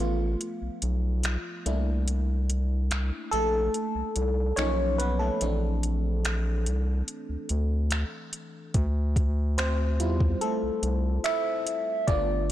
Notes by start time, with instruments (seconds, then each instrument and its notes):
Already playing: fm electric piano F3
0.00 analog synth bass A1, fm electric piano A3 B3 F4
0.41 closed hi-hat
0.62 analog synth bass B1
0.82 analog synth bass B1, closed hi-hat
1.23 finger snap, closed hi-hat
1.66 analog synth bass C2, fm electric piano A3 A#3 D4 E4, closed hi-hat
2.08 closed hi-hat
2.50 closed hi-hat
2.91 finger snap, closed hi-hat
3.31 analog synth bass A#1, fm electric piano A3 A4, closed hi-hat
3.74 closed hi-hat
3.95 analog synth bass C2
4.16 analog synth bass C2, closed hi-hat
4.56 analog synth bass B1, fm electric piano F3 A#3 C#4 D#4 C#5, finger snap, closed hi-hat
4.98 fm electric piano B3 B4, closed hi-hat
5.19 fm electric piano A3 A4
5.41 analog synth bass A#1, fm electric piano E3 A3 C4 D4, closed hi-hat
5.83 closed hi-hat
6.25 finger snap, closed hi-hat
6.66 analog synth bass C2, closed hi-hat
7.08 closed hi-hat
7.29 analog synth bass D2
7.49 analog synth bass D2, closed hi-hat
7.91 finger snap, closed hi-hat
8.33 closed hi-hat
8.74 analog synth bass D2, kick, closed hi-hat
9.16 kick, closed hi-hat
9.58 fm electric piano C4 C5, finger snap, closed hi-hat
10.00 analog synth bass E2, fm electric piano G3 C4 E4 F4, closed hi-hat
10.20 kick
10.41 fm electric piano A3 A4, closed hi-hat
10.63 analog synth bass C2
10.83 analog synth bass C2, closed hi-hat
11.24 fm electric piano E4 E5, finger snap, closed hi-hat
11.67 closed hi-hat
12.07 analog synth bass G1, fm electric piano A3 B3 D4 F4 D5, kick, closed hi-hat